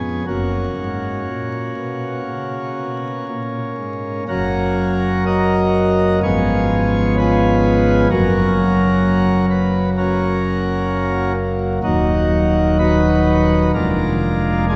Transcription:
Already playing: F2 B3 C#4 G#4
0.26 F#1 F#2 A#3 C#4 F#4
0.78 G#2
1.29 A#2
1.79 B2
2.29 C#3
2.80 B2
3.29 A#2
3.78 G#2
4.28 F#1 F#2 F#3 A#3 C#4 F#4 A#4
5.26 F#4 A#4 D#5
6.23 G#1 G#2 F3 B3 C#4 F4 G#4 C#5
7.17 F4 G#4 B4
8.11 F#1 F#2 F#3 A#3 C#4 F#4 A#4
9.50 B4
9.98 C#4 F#4 A#4
11.83 D#1 D#2 F#3 A#3 D#4 F#4
12.79 D#4 F#4 B4
13.74 F1 F2 G#3 A#3 D4 F4 A#4
14.68 D4 F4 G#4

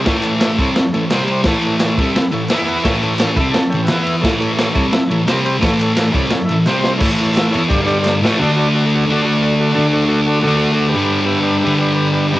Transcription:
0.04 A2 E3 E4 A4 C#5, kick, snare, ride
0.08 A3
0.21 E4 A4 C#5, clap, ride
0.38 E4 A4 E5, snare, clap, ride
0.59 C3 G3 C4 E4 A4 C#5, kick, ride
0.76 E4 A4, muted distorted electric guitar stroke, snare, ride
0.80 C#5
0.93 A2 E3 E4 A4 C#5, ride
1.10 C3 G3 C4 G4 C5, snare, clap, ride
1.28 C4 G4 C5, ride
1.44 A2 E3 E4 A4, kick, snare, ride
1.48 A3 C#5
1.62 E4 A4, ride
1.66 C#5
1.80 E4, snare, clap, ride
1.85 A4 C#5
1.97 C3 G3 E4 A4 E5, kick, ride
2.01 C4
2.16 E4 A4 B4, muted distorted electric guitar stroke, snare, ride
2.31 A2 E3 E4 A4 C#5, ride
2.49 E3 B3 E4 B4 E5, snare, clap, ride
2.65 E4 B4 F#5, ride
2.84 A2 E3 A3 E4 A4 C#5, kick, snare, ride
3.01 E4 A4 C#5, ride
3.18 E4 A4 C#5, snare, clap, ride
3.36 C3 E4 A4 E5 B5, kick, ride
3.40 G3 C4
3.50 E4 A4 C#5 A5, ride
3.54 muted distorted electric guitar stroke, snare
3.68 E4 A4 C#5 G5, ride
3.74 A2 E3
3.83 E4 B4 E5 F#5
3.88 E3 B3 E4, snare, clap, ride
4.03 E4 B4 E5, ride
4.20 A2 E4 A4 C#5, kick
4.25 E3 A3, snare, ride
4.39 E4 A4 C#5, ride
4.55 E4 A4 C#5, snare, ride
4.59 clap
4.73 C3 G3 C4 E4 A4 C#5, kick, ride
4.92 E4 A4 E5, muted distorted electric guitar stroke, snare, ride
5.08 A2 E4 A4 C#5, ride
5.12 E3
5.27 C3 G3 C4 C5, snare, clap, ride
5.31 G4
5.45 C4 G4 C5, ride
5.60 A2 E3 A3 E4 A4 C#5, kick, snare, ride
5.80 E4 A4 C#5, clap, ride
5.97 E4 A4, snare, clap, ride
6.01 C#5
6.13 C3 G3 C4 E4 A4 C#5, kick, ride
6.30 E4 A4 C#5, muted distorted electric guitar stroke, snare, ride
6.45 E4 A4 E5
6.49 A2 E3, ride
6.66 C3 G3 C4 G4 C5, snare, clap
6.77 C4 G4 C5
6.84 snare
6.97 E4 A4 C#5, kick, crash
7.02 A2 E3 A3
7.18 E4 A4, ride
7.23 C#5
7.33 E4 A4 E5, clap
7.37 snare, ride
7.51 E4 A4 C#5, ride
7.55 E3 B3 E4
7.68 G2 D3 G3 D4 G4 D5, kick, ride
7.86 D4 G4 D5, ride
8.00 D4 G4 D5
8.05 snare, clap
8.22 A2 E3 A3 E4 A4 C#5, snare
8.39 D3 A3 F#4 A4 D5
8.44 D4
8.56 F#4 A4 D5
8.74 F#4 A4 D5
8.95 F#4 A4 D5
9.07 D3 A3
9.11 D4 F#4 A4 D5
9.24 F#4 A4 D5
9.43 F#4 A4 D5
9.60 F#4 A4 D5
9.71 D3 F#4 A4 D5
9.77 A3 D4
9.92 F#4 A4 D5
10.08 F#4 A4 D5
10.26 F#4 A4 D5
10.42 D3 A3 F#4 A4 D5
10.48 D4
10.56 F#4 A4 D5
10.72 F#4 A4 D5
10.88 G4 B4 D5
10.94 G2 D3 G3
11.25 G4 B4 E5
11.43 G4 B4 D5
11.59 G4 B4 E5
11.65 G2 D3 G3
11.78 G4 B4 D5
11.94 G4 B4 D5
12.12 G4 B4 D5
12.30 G2 G4 B4 D5
12.36 D3 G3

